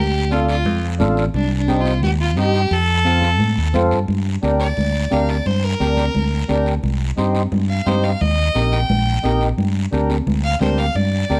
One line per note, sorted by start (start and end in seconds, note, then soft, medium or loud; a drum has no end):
0.00 0.66 D2 medium
0.00 0.33 G4 loud
0.31 0.55 D4 medium
0.31 0.55 F4 medium
0.31 0.48 F4 medium
0.31 0.56 A4 medium
0.31 high conga medium
0.31 short guiro medium
0.48 0.81 F4 medium
0.48 short guiro medium
0.65 1.02 F2 medium
0.65 low conga medium
0.65 long guiro medium
0.99 1.28 A1 medium
0.99 1.24 D4 loud
0.99 1.24 F4 medium
0.99 1.24 A4 loud
0.99 high conga medium
0.99 low conga medium
0.99 short guiro medium
1.17 short guiro medium
1.34 2.03 C2 loud
1.34 1.56 D4 medium
1.34 low conga medium
1.34 long guiro medium
1.58 1.82 D4 medium
1.68 1.92 C4 medium
1.68 1.93 D#4 medium
1.68 1.93 G4 medium
1.68 high conga medium
1.68 short guiro medium
1.80 2.03 F4 medium
1.85 high conga medium
1.85 short guiro medium
2.03 2.37 D#2 loud
2.03 2.11 G4 loud
2.03 low conga medium
2.03 long guiro medium
2.21 2.36 F4 medium
2.37 2.64 G2 medium
2.37 2.61 C4 medium
2.37 2.61 D#4 medium
2.37 2.61 G4 medium
2.37 2.74 G4 loud
2.37 high conga medium
2.37 short guiro medium
2.54 short guiro medium
2.71 3.40 F2 loud
2.71 3.75 A4 loud
2.71 long guiro medium
3.05 3.30 C4 medium
3.05 3.30 F4 medium
3.05 3.30 A4 medium
3.05 high conga medium
3.05 short guiro medium
3.22 high conga medium
3.22 short guiro medium
3.40 3.57 A2 loud
3.40 low conga medium
3.40 long guiro medium
3.58 3.73 D#2 medium
3.74 3.90 F2 medium
3.74 3.98 C4 medium
3.74 3.99 F4 medium
3.74 3.99 A4 loud
3.74 high conga medium
3.74 low conga medium
3.74 short guiro medium
3.91 4.07 G2 medium
3.91 short guiro medium
4.08 4.36 G2 medium
4.08 low conga medium
4.08 long guiro medium
4.43 4.71 D2 medium
4.43 4.67 D4 medium
4.43 4.67 G4 medium
4.43 4.67 A#4 medium
4.43 high conga medium
4.43 short guiro medium
4.60 5.14 D5 loud
4.60 short guiro medium
4.77 5.05 D2 loud
4.77 low conga medium
4.77 long guiro medium
5.11 5.39 D2 medium
5.11 5.36 D4 medium
5.11 5.36 G4 medium
5.11 5.36 A#4 medium
5.11 5.31 F5 medium
5.11 high conga medium
5.11 short guiro medium
5.29 5.48 D5 medium
5.29 short guiro medium
5.46 5.73 G2 medium
5.46 5.65 C5 medium
5.46 low conga medium
5.46 long guiro medium
5.64 6.64 A#4 loud
5.80 6.08 D2 loud
5.80 6.04 D4 medium
5.80 6.05 G4 medium
5.80 6.05 A#4 medium
5.80 high conga medium
5.80 short guiro medium
5.97 high conga medium
5.97 short guiro medium
6.15 6.43 D2 loud
6.15 low conga medium
6.15 long guiro medium
6.49 6.77 D2 medium
6.49 6.73 D4 medium
6.49 6.73 G4 medium
6.49 6.74 A#4 loud
6.49 high conga medium
6.49 short guiro medium
6.66 short guiro medium
6.83 7.11 C2 medium
6.83 low conga medium
6.83 long guiro medium
7.17 7.45 G2 medium
7.17 7.42 D#4 medium
7.17 7.42 G4 medium
7.17 7.42 C5 medium
7.17 high conga medium
7.17 short guiro medium
7.35 high conga medium
7.35 short guiro medium
7.52 7.79 G2 loud
7.52 low conga medium
7.52 long guiro medium
7.69 7.88 F5 medium
7.86 8.14 G2 medium
7.86 8.10 D#4 medium
7.86 8.11 G4 medium
7.86 8.05 C5 medium
7.86 8.11 C5 medium
7.86 high conga medium
7.86 low conga medium
7.86 short guiro medium
8.03 8.22 F5 medium
8.03 short guiro medium
8.21 8.49 D#2 medium
8.21 8.74 D#5 loud
8.21 low conga medium
8.21 long guiro medium
8.55 8.83 A#1 medium
8.55 8.79 D#4 medium
8.55 8.79 G4 medium
8.55 8.80 A#4 medium
8.55 high conga medium
8.55 short guiro medium
8.72 9.39 G5 loud
8.72 high conga medium
8.72 short guiro medium
8.89 9.17 A#1 loud
8.89 low conga medium
8.89 long guiro medium
9.24 9.51 A#1 medium
9.24 9.48 D#4 medium
9.24 9.48 G4 medium
9.24 9.48 A#4 loud
9.24 high conga medium
9.24 short guiro medium
9.41 short guiro medium
9.58 9.85 G2 medium
9.58 low conga medium
9.58 long guiro medium
9.92 10.20 D2 medium
9.92 10.16 D4 medium
9.92 10.17 G4 medium
9.92 10.17 A#4 loud
9.92 high conga medium
9.92 short guiro medium
10.10 high conga medium
10.10 short guiro medium
10.27 10.54 D2 loud
10.27 low conga medium
10.27 long guiro medium
10.44 10.60 F5 loud
10.61 10.88 D2 medium
10.61 10.85 D4 medium
10.61 10.85 G4 medium
10.61 10.86 A#4 medium
10.61 10.79 C5 medium
10.61 high conga medium
10.61 low conga medium
10.61 short guiro medium
10.78 10.97 F5 loud
10.78 short guiro medium
10.95 11.23 G2 loud
10.95 11.40 D5 loud
10.95 low conga medium
10.95 long guiro medium
11.30 11.40 D2 medium
11.30 11.40 D4 medium
11.30 11.40 G4 medium
11.30 11.40 A#4 medium
11.30 high conga medium
11.30 short guiro medium